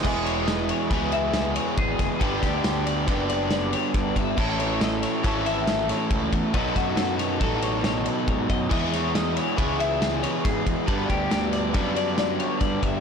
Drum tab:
CC |x---------|----------|x---------|----------|
RD |-xxxxxxxxx|xxxxxxxxxx|-xxxxxxxxx|xxxxxxxxxx|
SD |--o-o-o--o|-oo-o-o-o-|--o-o-oo--|-ooo--o---|
BD |o---o---oo|oo--o---oo|o---o---oo|oo--o---oo|

CC |x---------|----------|
RD |-xxxxxxxxx|xxxxxxxxxx|
SD |-oo---o-o-|--ooo-o-o-|
BD |o---o---oo|oo--o---oo|